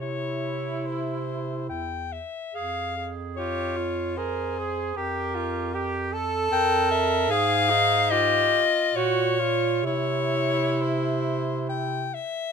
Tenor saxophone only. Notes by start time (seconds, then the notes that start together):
0.02 E4
3.36 F4
4.17 G#4
4.97 G4
5.35 F4
5.74 G4
6.13 A4
7.31 G#4
7.70 D#4
8.12 F4
9.85 E4